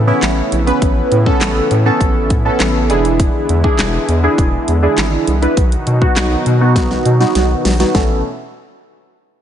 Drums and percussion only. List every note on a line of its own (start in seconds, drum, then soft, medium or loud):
0.23 snare medium
0.23 clap loud
0.23 closed hi-hat loud
0.52 closed hi-hat medium
0.67 closed hi-hat soft
0.82 kick loud
0.82 closed hi-hat medium
1.12 closed hi-hat medium
1.26 kick medium
1.41 snare loud
1.41 clap loud
1.41 closed hi-hat medium
1.71 closed hi-hat medium
2.01 kick loud
2.01 closed hi-hat medium
2.30 kick medium
2.30 closed hi-hat medium
2.60 snare medium
2.60 clap loud
2.60 closed hi-hat loud
2.90 closed hi-hat medium
3.05 closed hi-hat medium
3.20 kick loud
3.20 closed hi-hat loud
3.49 closed hi-hat medium
3.64 kick medium
3.79 snare loud
3.79 clap loud
3.79 closed hi-hat medium
4.09 closed hi-hat medium
4.38 kick loud
4.38 closed hi-hat medium
4.68 closed hi-hat medium
4.98 snare medium
4.98 clap loud
4.98 closed hi-hat loud
5.27 closed hi-hat medium
5.43 closed hi-hat medium
5.57 kick loud
5.57 closed hi-hat medium
5.72 closed hi-hat medium
5.87 closed hi-hat medium
6.02 kick medium
6.16 snare loud
6.16 clap loud
6.16 closed hi-hat medium
6.46 closed hi-hat medium
6.76 kick loud
6.76 snare medium
6.76 closed hi-hat medium
6.91 snare medium
7.05 closed hi-hat medium
7.21 snare medium
7.35 snare medium
7.35 closed hi-hat loud
7.65 snare loud
7.65 open hi-hat medium
7.80 snare medium
7.80 closed hi-hat medium
7.95 kick loud
7.95 snare loud